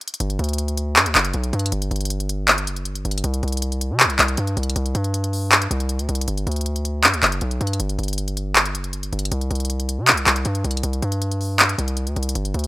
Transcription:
0.01 closed hi-hat
0.08 closed hi-hat
0.14 closed hi-hat
0.20 808-style bass G1, closed hi-hat
0.30 closed hi-hat
0.39 808-style bass D2, closed hi-hat
0.44 closed hi-hat
0.49 closed hi-hat
0.53 closed hi-hat
0.58 closed hi-hat
0.68 closed hi-hat
0.77 closed hi-hat
0.96 808-style bass G2, clap, closed hi-hat
1.06 808-style bass D2, closed hi-hat
1.15 808-style bass F#1, clap, closed hi-hat
1.25 closed hi-hat
1.34 808-style bass B1, closed hi-hat
1.44 closed hi-hat
1.53 808-style bass G2, closed hi-hat
1.59 closed hi-hat
1.66 closed hi-hat
1.72 808-style bass G1, closed hi-hat
1.82 closed hi-hat
1.91 808-style bass G1, closed hi-hat
1.96 closed hi-hat
2.01 closed hi-hat
2.05 closed hi-hat
2.10 closed hi-hat
2.20 closed hi-hat
2.29 closed hi-hat
2.48 clap, closed hi-hat
2.58 closed hi-hat
2.67 808-style bass F#1, closed hi-hat
2.76 closed hi-hat
2.85 808-style bass G1, closed hi-hat
2.95 closed hi-hat
3.05 808-style bass G1, closed hi-hat
3.11 closed hi-hat
3.18 closed hi-hat
3.24 808-style bass C2, closed hi-hat
3.34 closed hi-hat
3.43 808-style bass C2, closed hi-hat
3.48 closed hi-hat
3.52 closed hi-hat
3.57 closed hi-hat
3.62 closed hi-hat
3.72 closed hi-hat
3.81 closed hi-hat
3.90 808-style bass C3
4.00 clap, closed hi-hat
4.05 808-style bass C2
4.10 closed hi-hat
4.19 808-style bass C2, clap, closed hi-hat
4.28 closed hi-hat
4.37 808-style bass G2, closed hi-hat
4.47 closed hi-hat
4.57 808-style bass C2, closed hi-hat
4.63 closed hi-hat
4.70 closed hi-hat
4.76 808-style bass C2, closed hi-hat
4.86 closed hi-hat
4.95 808-style bass G2, closed hi-hat
5.04 closed hi-hat
5.14 closed hi-hat
5.24 closed hi-hat
5.33 open hi-hat
5.51 clap, closed hi-hat
5.62 closed hi-hat
5.71 808-style bass C2, closed hi-hat
5.80 closed hi-hat
5.89 closed hi-hat
5.99 808-style bass D2, closed hi-hat
6.09 808-style bass C2, closed hi-hat
6.15 closed hi-hat
6.21 closed hi-hat
6.28 808-style bass G1, closed hi-hat
6.38 closed hi-hat
6.47 808-style bass D2, closed hi-hat
6.52 closed hi-hat
6.56 closed hi-hat
6.61 closed hi-hat
6.66 closed hi-hat
6.76 closed hi-hat
6.85 closed hi-hat
7.03 808-style bass G2, clap, closed hi-hat
7.13 808-style bass D2, closed hi-hat
7.23 808-style bass F#1, clap, closed hi-hat
7.32 closed hi-hat
7.41 808-style bass B1, closed hi-hat
7.51 closed hi-hat
7.61 808-style bass G2, closed hi-hat
7.67 closed hi-hat
7.73 closed hi-hat
7.80 808-style bass G1, closed hi-hat
7.89 closed hi-hat
7.99 808-style bass G1, closed hi-hat
8.03 closed hi-hat
8.08 closed hi-hat
8.13 closed hi-hat
8.18 closed hi-hat
8.28 closed hi-hat
8.37 closed hi-hat
8.55 clap, closed hi-hat
8.66 closed hi-hat
8.75 808-style bass F#1, closed hi-hat
8.84 closed hi-hat
8.93 808-style bass G1, closed hi-hat
9.03 closed hi-hat
9.13 808-style bass G1, closed hi-hat
9.19 closed hi-hat
9.25 closed hi-hat
9.32 808-style bass C2, closed hi-hat
9.41 closed hi-hat
9.51 808-style bass C2, closed hi-hat
9.55 closed hi-hat
9.60 closed hi-hat
9.65 closed hi-hat
9.70 closed hi-hat
9.80 closed hi-hat
9.89 closed hi-hat
9.98 808-style bass C3
10.07 clap, closed hi-hat
10.12 808-style bass C2
10.17 closed hi-hat
10.27 808-style bass C2, clap, closed hi-hat
10.36 closed hi-hat
10.45 808-style bass G2, closed hi-hat
10.55 closed hi-hat
10.64 808-style bass C2, closed hi-hat
10.71 closed hi-hat
10.77 closed hi-hat
10.83 808-style bass C2, closed hi-hat
10.93 closed hi-hat
11.02 808-style bass G2, closed hi-hat
11.12 closed hi-hat
11.22 closed hi-hat
11.32 closed hi-hat
11.41 open hi-hat
11.59 clap, closed hi-hat
11.69 closed hi-hat
11.78 808-style bass C2, closed hi-hat
11.88 closed hi-hat
11.97 closed hi-hat
12.07 808-style bass D2, closed hi-hat
12.16 808-style bass C2, closed hi-hat
12.23 closed hi-hat
12.29 closed hi-hat
12.35 808-style bass G1, closed hi-hat
12.45 closed hi-hat
12.54 808-style bass D2, closed hi-hat
12.59 closed hi-hat
12.64 closed hi-hat

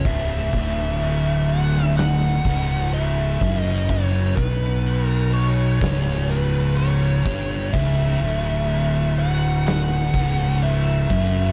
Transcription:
0.05 fingered electric bass C#1, distorted electric guitar C#2, lead electric guitar E5, kick, crash
0.53 fingered electric bass D1, distorted electric guitar D2, kick, crash
1.01 crash
1.49 lead electric guitar F#5, crash
1.76 snare
1.97 lead electric guitar F#5, snare, crash
2.45 fingered electric bass C#1, distorted electric guitar C#2, kick, crash
2.94 lead electric guitar E5, crash
3.41 fingered electric bass F#1, distorted electric guitar F#2, kick, crash
3.60 lead electric guitar D#5
3.89 lead electric guitar C#5, kick, crash
4.36 fingered electric bass B1, distorted electric guitar B2, lead electric guitar B4, kick, crash
4.86 crash
5.03 lead electric guitar A#4
5.34 lead electric guitar C#5, crash
5.81 fingered electric bass C#1, distorted electric guitar C#2, kick, snare, crash
6.30 lead electric guitar B4, crash
6.77 lead electric guitar C#5, crash
7.25 fingered electric bass G1, distorted electric guitar G2, kick, crash
7.73 fingered electric bass C#1, distorted electric guitar C#2, lead electric guitar E5, kick, crash
8.21 fingered electric bass D1, distorted electric guitar D2, crash
8.70 crash
9.19 lead electric guitar F#5, crash
9.66 lead electric guitar F#5, snare, crash
10.14 fingered electric bass C#1, distorted electric guitar C#2, kick, crash
10.62 lead electric guitar E5, crash
11.10 fingered electric bass F#1, distorted electric guitar F#2, kick, crash

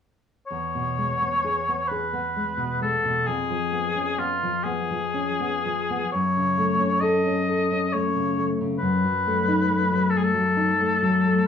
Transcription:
0.47 nylon-string guitar E2, oboe C#5
0.75 nylon-string guitar B2
0.98 nylon-string guitar G#3
1.22 nylon-string guitar B3
1.44 nylon-string guitar G#4
1.68 nylon-string guitar B3
1.88 nylon-string guitar G#4, oboe B4
2.13 nylon-string guitar B3
2.36 nylon-string guitar G#3
2.57 nylon-string guitar B2
2.81 nylon-string guitar G#3, oboe A4
3.04 nylon-string guitar B2
3.26 nylon-string guitar F2, oboe G#4
3.50 nylon-string guitar F3
3.72 nylon-string guitar B3
3.95 nylon-string guitar C#4
4.18 nylon-string guitar B3, oboe F4
4.43 nylon-string guitar F3
4.64 nylon-string guitar B3, oboe G#4
4.91 nylon-string guitar F3
5.14 nylon-string guitar C#4
5.40 nylon-string guitar B3
5.65 nylon-string guitar F3
5.90 nylon-string guitar B3
6.12 nylon-string guitar F#2, oboe C#5
6.37 nylon-string guitar C#3
6.58 nylon-string guitar A3
6.79 nylon-string guitar C#4
7.01 nylon-string guitar A4, oboe D#5
7.26 nylon-string guitar C#4
7.48 nylon-string guitar A4
7.72 nylon-string guitar C#4
7.93 nylon-string guitar A3, oboe C#5
8.15 nylon-string guitar C#3
8.38 nylon-string guitar A3
8.61 nylon-string guitar C#3
8.79 nylon-string guitar F#2, oboe B4
9.05 nylon-string guitar F#3
9.27 nylon-string guitar A3
9.48 nylon-string guitar D#4
9.69 nylon-string guitar A3
9.91 nylon-string guitar F#3
10.10 oboe A4
10.15 nylon-string guitar A3, oboe G#4
10.24 oboe A4
10.34 nylon-string guitar F#3
10.57 nylon-string guitar D#4
10.81 nylon-string guitar A3
11.02 nylon-string guitar F#3
11.26 nylon-string guitar A3

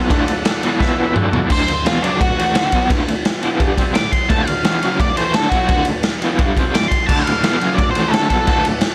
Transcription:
Already playing: overdriven electric guitar B3, transistor combo organ A4 D5 F#5
0.09 overdriven electric guitar D2 A2 D3, kick, ride
0.28 overdriven electric guitar D2 A2, ride
0.45 snare, ride
0.63 overdriven electric guitar E2 B2 E3, ride
0.79 overdriven electric guitar E2 B2 E3, transistor combo organ E4 B4 E5, kick, snare
1.12 overdriven electric guitar D2 A2 D3, transistor combo organ F#4 A4 D5, mid tom
1.32 overdriven electric guitar E2 B2 E3, floor tom
1.49 overdriven electric guitar D2 A2 D3, lead electric guitar C5, kick, crash
1.68 overdriven electric guitar D2 A2, ride
1.85 overdriven electric guitar E2 B2 E3, lead electric guitar F4, snare, ride
2.02 overdriven electric guitar F#2 C#3 F#3, lead electric guitar D4, ride
2.19 overdriven electric guitar D2 A2, lead electric guitar F#4, kick, ride
2.35 overdriven electric guitar A2 E3 A3
2.39 ride
2.53 overdriven electric guitar D2 A2 D3, snare, ride
2.71 overdriven electric guitar B2 F#3 B3, kick, ride
2.90 overdriven electric guitar D2 A2 D3, kick, ride
3.07 overdriven electric guitar D2 A2, ride
3.25 snare, ride
3.41 overdriven electric guitar E2 B2 E3, ride
3.60 overdriven electric guitar G2 D3 G3, kick, ride
3.76 overdriven electric guitar C3 G3 C4, kick, ride
3.94 overdriven electric guitar D2 A2, lead electric guitar D6, snare, ride
4.12 lead electric guitar C6, muted overdriven electric guitar stroke, kick, ride
4.29 overdriven electric guitar D2 A2 D3, lead electric guitar A5, kick, ride
4.47 overdriven electric guitar D2 A2, lead electric guitar F5, ride
4.64 overdriven electric guitar E2 B2 E3, snare, ride
4.83 overdriven electric guitar F#2 C#3 F#3, ride
5.00 overdriven electric guitar D2 A2, lead electric guitar D5, kick, ride
5.16 overdriven electric guitar A2 E3 A3, lead electric guitar C5, ride
5.34 overdriven electric guitar D2 A2 D3, lead electric guitar A4, snare, ride
5.49 overdriven electric guitar B2, lead electric guitar F#4, kick, ride
5.54 overdriven electric guitar F#3 B3
5.68 overdriven electric guitar D2 A2 D3, kick, ride
5.85 overdriven electric guitar D2 A2, ride
6.03 snare, ride
6.22 overdriven electric guitar E2 B2 E3, ride
6.39 overdriven electric guitar G2 D3 G3, kick, ride
6.57 overdriven electric guitar C3 G3 C4, kick, ride
6.74 overdriven electric guitar D2 A2, lead electric guitar D6, snare, ride
6.88 lead electric guitar C6, muted overdriven electric guitar stroke, kick, ride
7.06 transistor combo organ F#4 A4, lead electric guitar A5, kick, crash
7.10 overdriven electric guitar D2 A2 D3, transistor combo organ D5
7.24 overdriven electric guitar D2 A2, lead electric guitar F5, ride
7.43 overdriven electric guitar E2 B2 E3, snare, ride
7.60 overdriven electric guitar F#2 C#3 F#3, ride
7.75 overdriven electric guitar D2, lead electric guitar D5, kick, ride
7.79 overdriven electric guitar A2
7.91 lead electric guitar C5
7.95 overdriven electric guitar A2 E3 A3, ride
8.08 overdriven electric guitar D2, lead electric guitar A4
8.13 overdriven electric guitar A2 D3, snare, ride
8.29 overdriven electric guitar B2 F#3 B3, lead electric guitar A4, kick, ride
8.47 overdriven electric guitar D2 A2 D3, kick, ride
8.65 overdriven electric guitar D2 A2, ride
8.81 snare, ride

